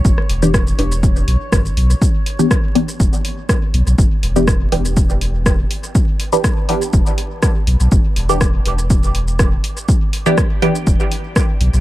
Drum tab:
HH |--o---o---o---o-|--o---o---o---o-|--o---o---o---o-|--o---o---o---o-|
SH |x--xxx-xxx--xx-x|x--xx--xxx--x--x|x--xx--xxx--x--x|x--xx--xxx--x--x|
SD |-r--r-------r---|----r-------r---|----r-------r---|----r-------r---|
BD |o---o---o---o---|o---o---o---o---|o---o---o---o---|o---o---o---o---|

HH |--o---o---o---o-|--o---o---o---o-|
SH |x--xx--xxx-xx--x|x--xx--xxx--x--x|
SD |----r-------r---|----r-------r---|
BD |o---o---o---o---|o---o---o---o---|